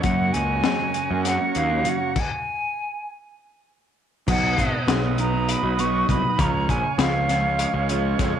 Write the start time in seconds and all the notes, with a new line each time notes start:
Already playing: C#5
0.02 F#2 C#3 F#3 A#3 C#4 F#4 F#5 A#5 C#6, kick, closed hi-hat
0.32 C#2 F#3 A#3 C#4 F#4 G#5, closed hi-hat
0.62 F#2 C#3 F#3 A#3 C#4 F#4, snare, closed hi-hat
0.78 F#3 A#3 C#4 F#4
0.94 muted clean electric guitar stroke, closed hi-hat
1.08 F#2 F#3 A#3 C#4 F#4
1.25 F#5, snare, closed hi-hat
1.38 F#3 A#3 C#4 F#4
1.55 D#2 F5, closed hi-hat
1.69 F#3 A#3 C#4 F#4
1.83 F#2 C#3 F#3 A#3 C#4 F#4, closed hi-hat
1.89 F#5
1.99 F#3 A#3 C#4 F#4
2.16 kick, crash
2.20 G#5
4.26 B1 B2 F#3 B3 D#4 F#4 B4 D#5 F#5 D#6, kick, crash
4.57 G#1, muted clean electric guitar stroke, kick, snare, closed hi-hat
4.87 B1 B2 F#3 B3 D#4 F#4, snare, closed hi-hat
5.02 B3 D#4 F#4
5.17 F#3 B3 D#4 F#4 A#5, closed hi-hat
5.32 B3 D#4 F#4
5.49 B5, closed hi-hat
5.62 B1 B3 D#4 F#4
5.78 F#3 B3 D#4 F#4 C#6, closed hi-hat
6.08 C2 B2 F#3 B3 D#4 F#4 B5, kick, closed hi-hat
6.24 B3 D#4 F#4
6.38 C#2 C#3 F3 G#3 C#4 F4 C#5 F5 G#5 A#5 C#6, kick, closed hi-hat
6.69 A#1 G#5, muted clean electric guitar stroke, kick, closed hi-hat
6.98 C#2 C#3 F3 G#3 C#4 F4 F5, snare, closed hi-hat
7.13 G#3 C#4 F4
7.28 F3 G#3 C#4 F4, snare, closed hi-hat
7.44 G#3 C#4 F4
7.59 closed hi-hat
7.74 C#2 G#3 C#4 F4
7.89 F3 G#3 C#4 F4, closed hi-hat
8.19 F2 C#3 F3 G#3 C#4 F4, kick, snare, closed hi-hat
8.34 C#4 F4